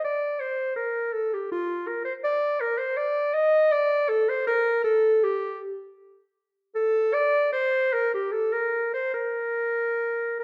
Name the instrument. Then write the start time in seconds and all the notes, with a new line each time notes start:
clarinet
0.04 D5
0.40 C5
0.76 A#4
1.13 A4
1.34 G4
1.52 F4
1.87 A#4
2.05 C5
2.24 D5
2.60 A#4
2.78 C5
2.97 D5
3.34 D#5
3.72 D5
4.09 A4
4.29 C5
4.47 A#4
4.84 A4
5.23 G4
6.75 A4
7.14 D5
7.53 C5
7.93 A#4
8.14 G4
8.32 A4
8.53 A#4
8.94 C5
9.14 A#4
10.39 A#4